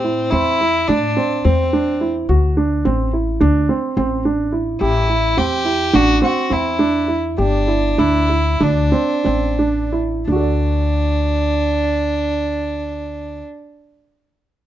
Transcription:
Already playing: A2 C4
0.04 E4
0.31 E2 C4 E4
0.61 E4
0.88 A2 D4
1.17 C4
1.45 E2 C4
1.73 D4
2.01 E4
2.29 D2 F#4
2.57 D4
2.85 A1 C4
3.13 E4
3.40 D2 D4
3.69 C4
3.97 A1 C4
4.25 D4
4.52 E4
4.81 A1 E4 G4
5.09 E4
5.37 E2 C4 G4
5.65 E4
5.93 A1 D4 F#4
6.22 C4 F#4
6.50 E2 C4 E4
6.79 D4
7.08 E4
7.38 G1 D4 G4
7.68 E4
7.98 D2 D4 E4
8.29 E4
8.60 D2 D4
8.92 C4
9.24 A1 C4
9.59 D4
9.92 E4
10.27 D2 D4
10.32 F#4
10.36 A4
10.40 D5

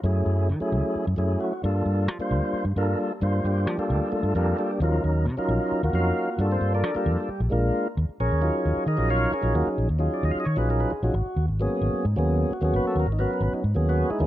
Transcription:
0.03 F#2 F#3 A3 C#4 E4 G#4
0.26 F#2
0.49 D#3
0.60 F#3 A3 C#4 E4 G#4, muted fingered electric bass stroke
0.72 C#2
0.95 muted fingered electric bass stroke
1.07 F#2
1.16 F#2 F#3 A3 C#4 E4 G#4
1.41 F#4
1.63 G2 G3 A#3 D4 F4 A4
1.86 G2
2.08 F3
2.19 G3 A#3 D4 F4 C5, muted fingered electric bass stroke
2.31 D2
2.53 muted fingered electric bass stroke
2.65 G2
2.76 G2 G3 A#3 D4 F4 A4 A#4
3.00 A4
3.22 G2 G3 A#3 D4 F4 C5
3.44 G2 G3 A#3 D4 G4
3.67 F3
3.77 G3 A#3 D4 F4 A4, muted fingered electric bass stroke
3.90 D2
4.12 A3 D4 F4 A4, muted fingered electric bass stroke
4.23 G2
4.35 F2 G3 A#3 D4 F4 G4 A4 A#4
4.58 G3 A#3 D4 G4
4.80 D#2 F3 F#3 A#3 C#4 D#4 F4 A#4
5.04 D#2
5.26 C3
5.37 F#3 C#4 D#4 F4 A#4, muted fingered electric bass stroke
5.48 A#1
5.72 muted fingered electric bass stroke
5.83 D#2 A#3 F4 F#4 A#4
5.93 F2 F#3 C#4 D#4 A#4 F5
6.38 G2 G3 A#3 D4 F4 A4
6.52 C4 C5
6.61 G2
6.74 D4 A4 A#4 D5
6.84 F3
6.95 G3 A#3 D4 F4 G4 A4 A#4, muted fingered electric bass stroke
7.06 F2
7.20 G3 G4
7.29 muted fingered electric bass stroke
7.40 A#1
7.50 A#1 G#3 A#3 D4 F4 A#4
7.97 D#2
8.09 muted fingered electric bass stroke
8.20 A#1 C#4 G#4 A#4 C#5
8.31 D#2
8.41 F#3 C#4 D#4 F4 G#4
8.65 D#2
8.76 muted fingered electric bass stroke
8.86 D#3 D#4 G#4 A#4 D#5
8.97 A#1 F#3 C#4 D#4 F4 A#4
9.10 F4 A#4 C#5 F5
9.32 C#4 G#4 A#4 C#5, muted fingered electric bass stroke
9.42 A#1 F#3 C#4 D#4 F4 G#4
9.55 D#2 A#3 F4 F#4 A#4
9.67 muted fingered electric bass stroke
9.78 A#1
9.89 D#2
9.99 F#3 C#4 D#4 F4 G#4
10.14 D5
10.23 D#2 D#5
10.31 F5, muted fingered electric bass stroke
10.40 D#5
10.45 D#3 C#5
10.56 A#1 F#3 C#4 D#4 F4 G#4 B4
10.70 A#4
10.80 B4
10.90 G#4, muted fingered electric bass stroke
11.03 A#1 F#3 C#4 D#4 F4 F#4 G#4
11.14 G#1
11.26 muted fingered electric bass stroke
11.36 D#2
11.48 G#1
11.60 F#3 A#3 B3 C#4 G#4
11.81 G#1
11.94 muted fingered electric bass stroke
12.05 G#2
12.16 D#2 F#3 A#3 B3 C#4 G#4
12.50 F#4, muted fingered electric bass stroke
12.61 D#2 F#3 A#3 B3 C#4 F#4 G#4
12.73 G#1 B4
12.84 A4, muted fingered electric bass stroke
12.96 D#2
13.00 A#4
13.06 G#1
13.12 D#4
13.18 F#3 B3 C#4 F#4 A#4 B4
13.33 A#4
13.40 G#1 B4
13.53 D#4, muted fingered electric bass stroke
13.64 G#2
13.74 D#2 F#3 A#3 B3 C#4 G#4
13.89 B3 F#4 G#4 B4
14.10 G#3 D#4 E4 G#4, muted fingered electric bass stroke
14.19 D#2 F#3 A#3 B3 C#4 G#4

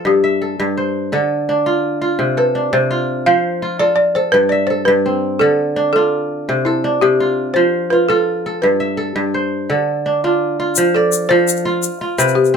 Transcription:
Already playing: F3 F4 A4 C5
0.05 G2 G4
0.24 E5
0.42 A4
0.60 G2
0.77 C5
1.12 D3 A4
1.49 D4
1.66 F4
2.01 F4
2.19 C3
2.37 A4 B4
2.55 D4
2.73 C3 C5
2.91 F4
3.26 F3 C5 F5
3.62 F4
3.79 F4 A4 D5
3.96 D5
4.15 A4 C5
4.32 G2 B4
4.49 D5 E5
4.67 A4 C5
4.85 G2 B4
5.06 C4
5.39 D3 A4
5.76 D4
5.93 D4 F4 A4
6.49 C3
6.65 E4 A4
6.84 D4
7.01 C3 G4
7.20 F4
7.54 F3 C5
7.90 F4 B4
8.09 F4 A4
8.46 A4
8.62 G2 B4
8.80 E5
8.97 A4
9.16 G2
9.34 C5
9.70 D3 A4
10.06 D4
10.24 D4 F4
10.60 F4
10.76 F3, shaker
10.95 A4 D5
11.12 shaker
11.29 F3 A4 C5
11.48 shaker
11.65 F4
11.83 shaker
12.01 F4
12.18 C3 B4, shaker
12.28 shaker
12.35 G4
12.45 shaker
12.54 C4

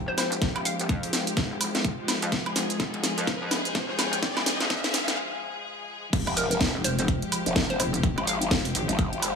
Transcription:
Already playing: G1 F3 G#3 F4 G4 C5, riser
0.08 C5
0.18 C5, snare, open hi-hat, high woodblock, shaker
0.32 closed hi-hat, shaker
0.42 G#1, kick, snare, closed hi-hat, shaker
0.56 D#1, closed hi-hat, high woodblock
0.65 F5, open hi-hat, shaker
0.80 closed hi-hat, shaker
0.89 F2, kick, closed hi-hat, shaker
1.03 open hi-hat
1.13 F1, snare, open hi-hat, shaker
1.27 closed hi-hat, shaker
1.37 kick, snare, closed hi-hat, shaker
1.51 F1
1.61 open hi-hat, high woodblock, shaker
1.75 F1, snare, closed hi-hat, shaker
1.84 kick, closed hi-hat, shaker
2.08 snare, open hi-hat, high woodblock, shaker
2.22 F2, closed hi-hat, shaker
2.32 F1 G#4, kick, snare, closed hi-hat, shaker
2.46 closed hi-hat, high woodblock
2.56 F1, snare, open hi-hat, shaker
2.70 closed hi-hat, shaker
2.80 kick, snare, closed hi-hat, shaker
2.94 F1, closed hi-hat
3.04 snare, open hi-hat, shaker
3.18 F2, closed hi-hat, shaker
3.27 kick, snare, closed hi-hat, shaker
3.37 G5
3.51 D#1, snare, open hi-hat, high woodblock, shaker
3.65 closed hi-hat, shaker
3.75 G1, kick, snare, closed hi-hat, shaker
3.99 snare, open hi-hat, high woodblock, shaker
4.13 closed hi-hat, shaker
4.23 G#1, kick, snare, closed hi-hat, shaker
4.37 D#1, snare, closed hi-hat, high woodblock
4.46 snare, open hi-hat, shaker
4.60 snare, closed hi-hat, shaker
4.70 F2, kick, snare, closed hi-hat, shaker
4.84 snare, open hi-hat
4.94 F1, snare, open hi-hat, shaker
5.08 snare, closed hi-hat, shaker
6.13 F1 F3 G#3 F4 G4, kick, closed hi-hat, crash, impact, shaker
6.27 F1, closed hi-hat, high woodblock
6.37 A#4, open hi-hat, shaker
6.51 A#4, closed hi-hat, shaker
6.61 kick, snare, closed hi-hat, shaker
6.72 F1 C5
6.84 C5, open hi-hat, shaker
6.99 C5, closed hi-hat, shaker
7.08 kick, closed hi-hat, shaker
7.22 closed hi-hat
7.32 open hi-hat, high woodblock, shaker
7.46 F1, closed hi-hat, shaker
7.56 kick, snare, closed hi-hat, shaker
7.70 C5, closed hi-hat
7.80 F1 C5, open hi-hat, high woodblock, shaker
7.94 closed hi-hat, shaker
8.03 kick, closed hi-hat, shaker
8.18 G#1, closed hi-hat, high woodblock
8.27 F5, open hi-hat, shaker
8.41 closed hi-hat, shaker
8.51 F1, kick, snare, closed hi-hat, shaker
8.65 open hi-hat
8.75 G#1, open hi-hat, shaker
8.89 G#1, closed hi-hat, shaker
8.99 kick, closed hi-hat, shaker
9.13 closed hi-hat
9.22 open hi-hat, high woodblock, shaker

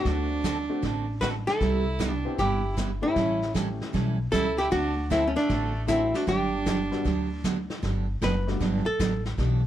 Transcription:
Already playing: A3 C4 D4 F#4
0.05 D2 D3 A3 C4 F#4 A4, brush sweep, kick, snare
0.44 D3 A3 C4 F#4 A4, kick, snare, hi-hat pedal
0.70 A3 C4 D4 F#4
0.82 A1 D3 A3 C4 F#4 A4, brush sweep, kick, snare
1.21 D3 A3 C4 F#4 A4 B4, kick, snare, hi-hat pedal
1.47 E4 A4, snare
1.60 C2 C3 G3 B3 E4 G4, brush sweep, kick, snare
1.99 C3 G3 B3 E4 G4, kick, snare, hi-hat pedal
2.09 D4
2.13 G4
2.25 B3 C4 E4 G4
2.38 G1 C3 G3 B3 E4 G4, brush sweep, kick, snare
2.77 C3 G3 B3 E4 G4, kick, snare, hi-hat pedal
3.02 A3 C#4 E4 G4
3.16 A1 E3 G3 C#4 E4 A4, brush sweep, kick, snare
3.42 snare
3.54 E3 G3 A3 C#4 E4 G4 A4, kick, snare, hi-hat pedal
3.81 snare
3.93 B1 E3 G3 C#4 E4 A4, brush sweep, kick, snare
4.32 C#2 E3 G3 C#4 E4 A4, kick, snare, hi-hat pedal
4.58 E4 G4, snare
4.71 D2 D3 A3 C4 D4 F#4 A4, brush sweep, kick, snare
5.10 D3 A3 C4 E4 F#4 A4, kick, snare, hi-hat pedal
5.27 A3 C#4
5.35 A3 D4, snare
5.49 A1 D3 A3 C4 F#4 A4, brush sweep, kick, snare
5.87 D3 A3 C4 D4 E4 F#4 A4, kick, snare, hi-hat pedal
6.14 D4 F#4, snare
6.27 G1 D3 F#3 B3 D4 G4, brush sweep, kick, snare
6.66 D3 F#3 B3 D4 G4, kick, snare, hi-hat pedal
6.92 G3 B3 D4 F#4, snare
7.05 D2 D3 F#3 B3 D4 G4, brush sweep, kick, snare
7.44 D3 F#3 B3 D4 G4, kick, snare, hi-hat pedal
7.70 snare
7.82 G1 D3 F#3 B3 D4 G4, brush sweep, kick, snare
8.21 F#1 D3 F#3 B3 D4 G4 B4, kick, snare, hi-hat pedal
8.47 G3 A3 B3 D4 F#4, snare
8.60 G1 D3 F#3 B3 D4 G4, brush sweep, kick, snare
8.86 A4, muted upright bass stroke
8.99 A1 D3 F#3 B3 D4 G4, kick, snare, hi-hat pedal
9.25 snare
9.38 B1 E3 B3 D4 G4, brush sweep, kick, snare

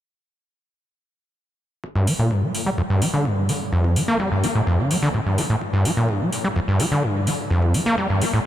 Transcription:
1.84 kick
1.96 G2, kick
2.07 G3, open hi-hat
2.19 A#2
2.31 G2, kick
2.43 G3
2.55 open hi-hat
2.66 G3
2.78 F2, kick
2.90 G2
3.02 G3, open hi-hat
3.14 D3
3.25 G2, kick
3.49 A#3, open hi-hat
3.73 F2, kick
3.84 kick
3.96 G3, open hi-hat
4.08 A#3
4.20 G3, kick
4.32 G2
4.44 A#3, open hi-hat
4.55 A2
4.67 F2, kick
4.79 D3
4.91 G3, open hi-hat
5.03 D3
5.14 A2, kick
5.26 G2
5.38 A#3, open hi-hat
5.50 A2
5.62 kick
5.73 G2, kick
5.85 G3, open hi-hat
5.97 A#2
6.09 G2, kick
6.21 G3
6.33 open hi-hat
6.44 G3
6.56 F2, kick
6.68 G2
6.80 G3, open hi-hat
6.92 D3
7.03 G2, kick
7.27 A#3, open hi-hat
7.51 F2, kick
7.62 kick
7.74 G3, open hi-hat
7.86 A#3
7.98 G3, kick
8.10 G2
8.22 A#3, open hi-hat
8.33 A2

